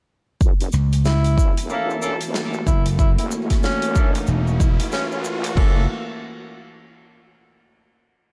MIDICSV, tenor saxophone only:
0, 0, Header, 1, 2, 480
1, 0, Start_track
1, 0, Tempo, 645161
1, 304, Time_signature, 4, 2, 24, 8
1, 6193, End_track
2, 0, Start_track
2, 0, Title_t, "Tenor saxophone"
2, 0, Program_c, 0, 66
2, 785, Note_on_c, 0, 64, 91
2, 1170, Note_off_c, 0, 64, 0
2, 1265, Note_on_c, 0, 58, 88
2, 1410, Note_off_c, 0, 58, 0
2, 1986, Note_on_c, 0, 64, 88
2, 2130, Note_off_c, 0, 64, 0
2, 2224, Note_on_c, 0, 64, 87
2, 2317, Note_off_c, 0, 64, 0
2, 2369, Note_on_c, 0, 64, 75
2, 2430, Note_off_c, 0, 64, 0
2, 2703, Note_on_c, 0, 61, 95
2, 3089, Note_off_c, 0, 61, 0
2, 3664, Note_on_c, 0, 61, 89
2, 3757, Note_off_c, 0, 61, 0
2, 3810, Note_on_c, 0, 61, 80
2, 3870, Note_off_c, 0, 61, 0
2, 6193, End_track
0, 0, End_of_file